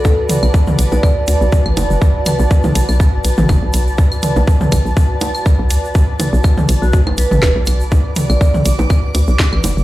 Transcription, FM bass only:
X:1
M:4/4
L:1/16
Q:"Swing 16ths" 1/4=122
K:Bm
V:1 name="FM bass" clef=bass
z3 B,,, z2 B,,, B,,, z2 D,, B,,, z A,,, F,,, F,,, | z3 B,,, z2 B,,, B,,,2 F,,, B,,, A,,, F,,, B,,, B,,, z | z3 B,,, z2 B,,, B,,, z4 z B,,, D,, z | z3 B,,, z2 B,,, B,,,2 F,,, B,,, A,,, F,,, B,,, B,,, z |
z3 B,,, z2 B,,, B,,, z2 D,, B,,, z A,,, F,,, F,,, |]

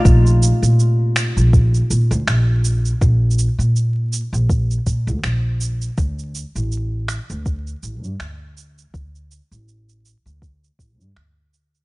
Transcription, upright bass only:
X:1
M:4/4
L:1/16
Q:"Swing 16ths" 1/4=81
K:Bb
V:1 name="Upright bass" clef=bass
B,,,2 z B,,3 z B,,,2 z B,, D,, B,,,3 z | B,,,2 z B,,3 z B,,,2 z B,, D,, B,,,3 z | D,,2 z A,,,3 z D,,2 z A,,, G,, D,,3 z | D,,2 z A,,,3 z D,,2 z A,,, G,, D,,3 z |]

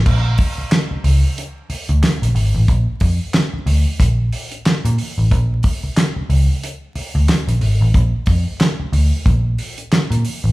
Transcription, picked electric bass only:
X:1
M:4/4
L:1/16
Q:"Swing 16ths" 1/4=91
K:Cm
V:1 name="Picked electric bass" clef=bass
B,,,2 z4 _D,, z4 =D,, z B,,, A,,, =A,,, | B,,, z F,, z3 D,, z B,,,2 z3 B,, z =A,,, | B,,,2 z4 _D,, z4 =D,, z B,,, A,,, =A,,, | B,,, z F,, z3 D,, z B,,,2 z3 B,, z =A,,, |]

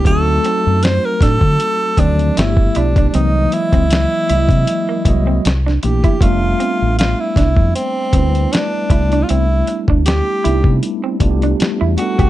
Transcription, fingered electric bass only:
X:1
M:4/4
L:1/16
Q:"Swing 16ths" 1/4=78
K:Flyd
V:1 name="Fingered electric bass" clef=bass
D,,2 z ^F,,2 z A,, D, z2 D,,2 G,,,2 B,,,2 | C,,2 z _D,,2 z C,, C, z2 C,,2 C,,2 _B,,, z | F,,,2 z A,,,2 z C,, F,, z2 D,,2 z2 C,,2 | C,,2 z D,,2 z C,, C, z2 C,,2 z E,, z C,, |]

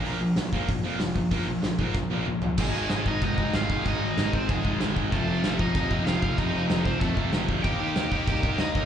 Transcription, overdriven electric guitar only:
X:1
M:4/4
L:1/8
Q:1/4=190
K:Ablyd
V:1 name="Overdriven electric guitar"
z8 | z8 | [A,A]3 [Ee] [Ee]2 [Ff] [Ff] | [Ee]3 [Cc] [A,A]2 z2 |
[=A,=A]3 [Ee] [Ee]2 [Ff] [Ff] | [Ee]3 [Cc] [=A,=A]2 z2 | [Gg]3 [Gg]3 [Ee]2 |]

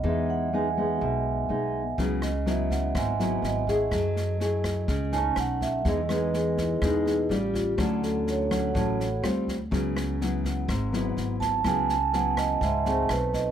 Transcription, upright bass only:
X:1
M:4/4
L:1/8
Q:1/4=124
K:C#m
V:1 name="Upright bass" clef=bass
E,,4 B,,,2 B,,,2 | C,,4 G,,,2 G,,,2 | F,,4 C,,2 B,,,2 | E,,4 E,,2 A,,,2 |
=D,,4 A,,,2 D,,2 | C,,4 G,,,2 G,,,2 | C,,4 C,,2 B,,,2 |]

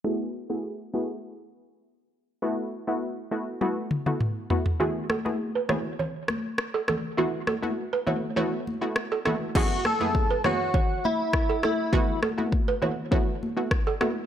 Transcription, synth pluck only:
X:1
M:4/4
L:1/16
Q:1/4=101
K:F#m
V:1 name="Synth pluck"
[A,B,EFG]2 z [A,B,EFG] z2 [A,B,EFG]2 z8 | [A,B,EF]3 [A,B,EF] z2 [A,B,EF]2 [A,B,EF]2 z [A,B,EF] z2 [A,B,EF]2 | [A,B,EFG]2 z [A,B,EFG] z2 [A,B,EFG]2 z8 | [A,B,EF]3 [A,B,EF] z2 [A,B,EF]2 [A,B,EF]2 z [A,B,EF] z2 [A,B,EF]2 |
[F,,A,B,EG]2 z [F,,A,B,EG] z2 [F,,A,B,EG]2 z8 | [A,B,EF]3 [A,B,EF] z2 [A,B,EF]2 [A,B,EF]2 z [A,B,EF] z2 [A,B,EF]2 |]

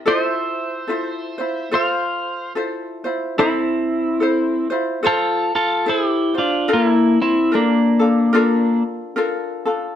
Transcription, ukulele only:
X:1
M:4/4
L:1/8
Q:"Swing" 1/4=72
K:F
V:1 name="Ukulele"
[EFAc]2 [EFAc] [EFc] [FAc]2 [EFAc] [EFc] | [EAc]2 [EAc] [EFc] [FAc]2 [EAc] [Fc] | [DAB]2 [DFAB] [DFA] [DFAB]2 [DFAB] [DFA] |]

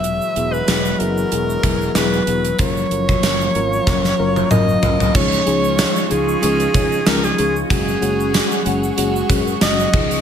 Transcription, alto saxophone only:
X:1
M:4/4
L:1/16
Q:"Swing 16ths" 1/4=94
K:Gblyd
V:1 name="Alto saxophone"
=e3 =B3 _B6 =B4 | d12 e4 | d6 A6 B A3 | A6 z6 e4 |]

